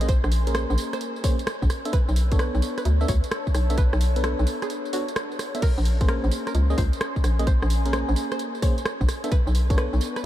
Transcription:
Already playing: fm bass A#1, ambient pad C#4 G#5 C6
0.01 fm electric piano A#3 C#4 G#4 D#5, closed hi-hat, tambourine
0.09 synth pluck C5, kick, closed hi-hat, tambourine
0.24 fm bass A#1, cross-stick, tambourine
0.32 open hi-hat, tambourine
0.47 fm electric piano A#3 C#4 G#4 A#4, closed hi-hat, tambourine
0.55 synth pluck C5, cross-stick, closed hi-hat, tambourine
0.70 fm bass A#1, tambourine
0.78 open hi-hat, tambourine
0.93 synth pluck C5, cross-stick, closed hi-hat, tambourine
1.01 closed hi-hat, tambourine
1.16 tambourine
1.24 fm electric piano A#3 C#4 G#4 C5, synth pluck C#5, kick, open hi-hat, tambourine
1.39 closed hi-hat, tambourine
1.47 cross-stick, closed hi-hat, tambourine
1.62 fm bass A#1, kick, tambourine
1.70 ambient pad D4, cross-stick, open hi-hat, tambourine
1.85 fm electric piano B3 D4 A4 E5, closed hi-hat, tambourine
1.93 synth pluck B4, kick, closed hi-hat, tambourine
2.09 fm bass B1, ambient pad C#5, tambourine
2.16 open hi-hat, tambourine
2.32 fm electric piano B3 D4 A4 C#5, kick, closed hi-hat, tambourine
2.36 synth pluck B4, ambient pad A5, cross-stick, closed hi-hat, tambourine
2.55 fm bass B1, tambourine
2.62 open hi-hat, tambourine
2.78 synth pluck B4, cross-stick, closed hi-hat, tambourine
2.85 fm bass D2, closed hi-hat, tambourine
3.01 fm electric piano B3 D4 A4 E5, tambourine
3.08 fm bass D2, synth pluck C#5, kick, open hi-hat, tambourine
3.24 closed hi-hat, tambourine
3.31 cross-stick, closed hi-hat, tambourine
3.47 kick, tambourine
3.55 fm bass B1, cross-stick, open hi-hat, tambourine
3.70 fm electric piano B3 D4 A4 E5, closed hi-hat, tambourine
3.78 synth pluck B4, kick, closed hi-hat, tambourine
3.93 fm bass B1, cross-stick, tambourine
4.01 open hi-hat, tambourine
4.16 fm electric piano B3 D4 A4 B4, closed hi-hat, tambourine
4.24 synth pluck A4, cross-stick, closed hi-hat, tambourine
4.39 fm bass B1, tambourine
4.47 open hi-hat, tambourine
4.62 synth pluck G#4, cross-stick, closed hi-hat, tambourine
4.70 closed hi-hat, tambourine
4.85 tambourine
4.93 fm electric piano B3 D4 A4 C#5, synth pluck F#4, open hi-hat, tambourine
5.08 closed hi-hat, tambourine
5.16 cross-stick, closed hi-hat, tambourine
5.32 tambourine
5.39 cross-stick, open hi-hat, tambourine
5.55 fm electric piano B3 D4 A4 E5, closed hi-hat, tambourine
5.62 ambient pad C#4, synth pluck A#4, kick, closed hi-hat, crash, tambourine
5.77 fm bass A#1, ambient pad C6, tambourine
5.85 open hi-hat, tambourine
6.01 fm electric piano A#3 C#4 G#4 C5, kick, closed hi-hat, tambourine
6.09 synth pluck A#4, cross-stick, closed hi-hat, tambourine
6.24 fm bass A#1, tambourine
6.32 open hi-hat, tambourine
6.46 synth pluck A#4, ambient pad G#5, cross-stick, closed hi-hat, tambourine
6.55 fm bass C#2, closed hi-hat, tambourine
6.70 fm electric piano A#3 C#4 G#4 D#5, tambourine
6.78 fm bass C#2, synth pluck C5, kick, open hi-hat, tambourine
6.93 closed hi-hat, tambourine
7.01 cross-stick, closed hi-hat, tambourine
7.16 kick, tambourine
7.24 fm bass A#1, cross-stick, open hi-hat, tambourine
7.39 fm electric piano A#3 C#4 G#4 D#5, closed hi-hat, tambourine
7.47 synth pluck C5, kick, closed hi-hat, tambourine
7.62 fm bass A#1, cross-stick, tambourine
7.70 open hi-hat, tambourine
7.85 fm electric piano A#3 C#4 G#4 A#4, closed hi-hat, tambourine
7.93 synth pluck C5, cross-stick, closed hi-hat, tambourine
8.09 fm bass A#1, tambourine
8.16 open hi-hat, tambourine
8.32 synth pluck C5, cross-stick, closed hi-hat, tambourine
8.39 closed hi-hat, tambourine
8.55 tambourine
8.62 fm electric piano A#3 C#4 G#4 C5, synth pluck C#5, kick, open hi-hat, tambourine
8.78 closed hi-hat, tambourine
8.86 cross-stick, closed hi-hat, tambourine
9.01 fm bass A#1, kick, tambourine
9.08 ambient pad D4, cross-stick, open hi-hat, tambourine
9.24 fm electric piano B3 D4 A4 E5, closed hi-hat, tambourine
9.32 synth pluck B4, kick, closed hi-hat, tambourine
9.39 ambient pad C#6
9.47 fm bass B1, tambourine
9.55 open hi-hat, tambourine
9.70 fm electric piano B3 D4 A4 C#5, kick, closed hi-hat, tambourine
9.78 synth pluck B4, cross-stick, closed hi-hat, tambourine
9.93 fm bass B1, ambient pad A5, tambourine
10.01 open hi-hat, tambourine
10.16 synth pluck B4, cross-stick, closed hi-hat, tambourine

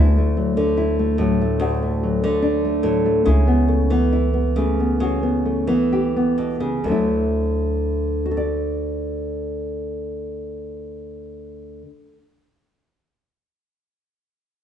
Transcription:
Already playing: nylon-string guitar D2 A3 E4, upright bass D2
0.18 nylon-string guitar A3
0.37 nylon-string guitar F#3
0.57 nylon-string guitar D3 A3
0.77 nylon-string guitar E4
0.99 nylon-string guitar A3
1.18 nylon-string guitar A2 F#3
1.42 nylon-string guitar A3
1.60 nylon-string guitar D2 F#4
1.83 nylon-string guitar A3
2.03 nylon-string guitar F#3
2.24 nylon-string guitar D3 A3
2.42 nylon-string guitar D4
2.65 nylon-string guitar A3
2.83 nylon-string guitar A2 F#3
3.06 nylon-string guitar A3
3.25 upright bass C#2, nylon-string guitar C#3 E4
3.47 nylon-string guitar B3
3.68 nylon-string guitar A3
3.90 nylon-string guitar E3 B3
4.13 nylon-string guitar E4
4.34 nylon-string guitar B3
4.56 nylon-string guitar C#3 A3
4.80 nylon-string guitar B3
5.00 nylon-string guitar C#3 F#4
5.23 nylon-string guitar B3
5.45 nylon-string guitar A3
5.67 nylon-string guitar E3 B3
5.92 nylon-string guitar G4
6.17 nylon-string guitar B3
6.38 nylon-string guitar B2
6.60 nylon-string guitar C#3
6.83 upright bass D2, nylon-string guitar D2 D3
6.88 nylon-string guitar F#3 A3 E4
8.26 nylon-string guitar F#4
8.31 nylon-string guitar A4
8.37 nylon-string guitar D5

